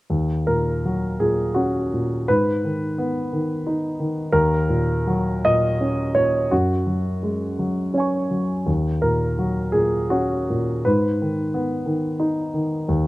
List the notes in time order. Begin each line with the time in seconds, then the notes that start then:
0.10 D#2
0.47 A#2 A#4
0.85 F#3
1.20 A#2 G#4
1.54 C#4 F#4
1.93 A#2
2.28 G#2 B4
2.65 D#3
2.98 B3
3.33 D#3
3.67 D#4
4.00 D#3
4.32 D#2 A#4
4.69 A#2
5.07 F#3
5.45 A#2 D#5
5.81 C#4
6.15 A#2 C#5
6.51 F#2 F#4
6.87 F#3
7.23 G#3
7.59 F#3
7.94 C#4 C#5 G#5
8.00 C#6
8.31 F#3
8.66 D#2
9.02 A#2 A#4
9.39 F#3
9.72 A#2 G#4
10.10 C#4 F#4
10.50 A#2
10.85 G#2 B4
11.22 D#3
11.54 B3
11.86 D#3
12.20 D#4
12.54 D#3
12.88 D#2